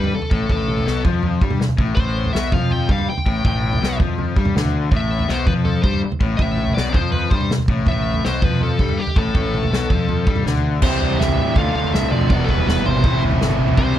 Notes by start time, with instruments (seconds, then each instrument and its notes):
Already playing: fingered electric bass G2, overdriven electric guitar G3, lead electric guitar B4
0.04 floor tom
0.14 lead electric guitar A4, muted overdriven electric guitar stroke, muted fingered electric bass stroke
0.22 floor tom
0.31 fingered electric bass A1, overdriven electric guitar A2, kick
0.50 fingered electric bass A1, overdriven electric guitar A2, lead electric guitar A4, kick, floor tom
0.68 mid tom
0.78 floor tom
0.86 fingered electric bass B1, overdriven electric guitar B2, snare
1.05 fingered electric bass F2, overdriven electric guitar F3, kick, floor tom
1.23 floor tom
1.42 fingered electric bass G2, overdriven electric guitar G3, kick
1.50 floor tom, mid tom
1.60 muted overdriven electric guitar stroke, muted fingered electric bass stroke, snare
1.69 floor tom
1.78 fingered electric bass A1, overdriven electric guitar A2, kick
1.95 fingered electric bass A1, overdriven electric guitar A2, lead electric guitar C5, kick, floor tom
2.25 floor tom
2.33 fingered electric bass B1, overdriven electric guitar B2, lead electric guitar E5, snare
2.52 fingered electric bass F2, overdriven electric guitar F3, lead electric guitar F5, kick, floor tom, mid tom
2.71 lead electric guitar G5, floor tom
2.89 fingered electric bass G2, overdriven electric guitar G3, lead electric guitar F5, kick
2.98 floor tom
3.08 lead electric guitar G5, muted overdriven electric guitar stroke, muted fingered electric bass stroke
3.17 floor tom
3.26 fingered electric bass A1, overdriven electric guitar A2, kick
3.45 fingered electric bass A1, overdriven electric guitar A2, lead electric guitar G5, kick, floor tom
3.63 mid tom
3.73 floor tom
3.81 fingered electric bass B1, overdriven electric guitar B2, snare
4.00 fingered electric bass F2, overdriven electric guitar F3, kick, floor tom
4.18 floor tom
4.36 fingered electric bass G2, overdriven electric guitar G3, kick
4.45 floor tom, mid tom
4.56 fingered electric bass D2, overdriven electric guitar D3, snare
4.64 floor tom
4.91 fingered electric bass A1, overdriven electric guitar A2, kick, floor tom
4.96 lead electric guitar E5
5.19 floor tom
5.29 fingered electric bass B1, overdriven electric guitar B2, lead electric guitar C5, snare
5.46 fingered electric bass F2, overdriven electric guitar F3, lead electric guitar B4, kick, floor tom, mid tom
5.65 lead electric guitar A4, floor tom
5.83 fingered electric bass G2, overdriven electric guitar G3, lead electric guitar C5, kick
5.93 floor tom
6.03 muted overdriven electric guitar stroke, muted fingered electric bass stroke
6.12 floor tom
6.21 fingered electric bass A1, overdriven electric guitar A2, kick
6.37 fingered electric bass A1, overdriven electric guitar A2, lead electric guitar E5, kick, floor tom
6.57 mid tom
6.67 floor tom
6.74 fingered electric bass B1, overdriven electric guitar B2, lead electric guitar D5, snare
6.93 fingered electric bass F2, overdriven electric guitar F3, lead electric guitar C5, kick, floor tom
7.12 lead electric guitar B4, floor tom
7.30 fingered electric bass G2, overdriven electric guitar G3, lead electric guitar C5, kick
7.41 floor tom, mid tom
7.51 muted fingered electric bass stroke, muted overdriven electric guitar stroke, snare
7.58 floor tom
7.68 fingered electric bass A1, overdriven electric guitar A2, kick
7.86 fingered electric bass A1, overdriven electric guitar A2, lead electric guitar E5, kick, floor tom
8.14 floor tom
8.25 fingered electric bass B1, overdriven electric guitar B2, lead electric guitar C5, snare
8.42 fingered electric bass F2, overdriven electric guitar F3, lead electric guitar B4, kick, floor tom, mid tom
8.61 lead electric guitar A4, floor tom
8.79 fingered electric bass G2, overdriven electric guitar G3, kick
8.89 floor tom
8.98 lead electric guitar G4, muted overdriven electric guitar stroke, muted fingered electric bass stroke
9.07 floor tom
9.16 fingered electric bass A1, overdriven electric guitar A2, lead electric guitar A4, kick
9.35 fingered electric bass A1, overdriven electric guitar A2, kick, floor tom
9.54 mid tom
9.63 floor tom
9.72 fingered electric bass B1, overdriven electric guitar B2, snare
9.90 fingered electric bass F2, overdriven electric guitar F3, kick, floor tom
10.09 floor tom
10.27 fingered electric bass G2, overdriven electric guitar G3, kick
10.36 floor tom, mid tom
10.46 fingered electric bass D2, overdriven electric guitar D3, snare
10.54 floor tom
10.82 fingered electric bass C2, overdriven electric guitar C3 E3 G3 C4 E4, lead electric guitar C5, kick, floor tom, crash
10.86 overdriven electric guitar G4
11.01 fingered electric bass C2, floor tom
11.10 floor tom
11.19 fingered electric bass C2, lead electric guitar E5, snare, floor tom
11.28 floor tom
11.37 fingered electric bass A2, lead electric guitar E5, floor tom
11.56 fingered electric bass D2, overdriven electric guitar D3 A3 D4 F4, lead electric guitar F5, kick, floor tom
11.75 fingered electric bass D2, lead electric guitar F5
11.84 floor tom
11.94 fingered electric bass C2, lead electric guitar E5, snare
12.03 mid tom
12.11 fingered electric bass F2, lead electric guitar D5, mid tom
12.21 floor tom
12.30 fingered electric bass E1, overdriven electric guitar E2 B2 E3 G3 B3 E4, lead electric guitar D5, kick, floor tom
12.44 lead electric guitar A4
12.49 fingered electric bass E1, lead electric guitar B4, kick, floor tom
12.58 floor tom
12.67 fingered electric bass E1, lead electric guitar B4, snare, floor tom
12.76 floor tom
12.86 fingered electric bass G#1, lead electric guitar C5, floor tom, mid tom
13.04 fingered electric bass A1, overdriven electric guitar A2 E3 A3 C4 E4, kick, floor tom
13.13 mid tom
13.23 fingered electric bass A1, floor tom
13.31 floor tom
13.41 fingered electric bass G1, snare
13.50 mid tom
13.59 fingered electric bass A1, mid tom
13.68 floor tom
13.77 fingered electric bass C2, overdriven electric guitar C3 E3 G3 C4 E4, lead electric guitar C5, kick, floor tom